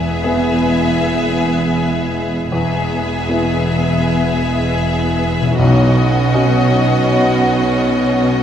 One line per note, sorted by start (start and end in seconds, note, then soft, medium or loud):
0.00 2.48 E1 soft
0.00 0.21 E2 soft
0.00 2.48 E2 medium
0.00 3.19 E2 soft
0.00 2.48 G#3 soft
0.00 2.48 B3 soft
0.00 3.24 B3 soft
0.00 2.48 E4 soft
0.00 3.28 E4 soft
0.00 2.48 G#4 soft
0.00 3.33 G#4 soft
0.00 2.48 E5 soft
0.24 2.48 B3 soft
0.24 2.48 E4 soft
0.24 2.49 G#4 soft
2.51 5.55 E1 medium
2.51 3.27 E2 soft
2.51 5.56 E2 soft
2.51 5.55 G#3 soft
2.51 5.55 B3 soft
2.51 5.55 E4 medium
2.51 5.56 G#4 soft
2.51 5.56 E5 soft
3.29 5.55 B3 soft
3.29 5.56 E4 soft
3.29 5.56 G#4 soft
5.41 8.43 B2 soft
5.46 8.43 C#4 soft
5.50 8.43 D#4 soft
5.55 8.43 F#4 soft
5.55 8.43 F#4 medium
5.59 6.32 B1 medium
5.59 8.43 B1 medium
5.59 8.43 B2 medium
5.59 8.43 C#4 medium
5.59 8.43 D#4 soft
5.59 8.43 D#5 medium
6.34 8.43 C#4 soft
6.34 8.43 D#4 soft
6.34 8.43 F#4 soft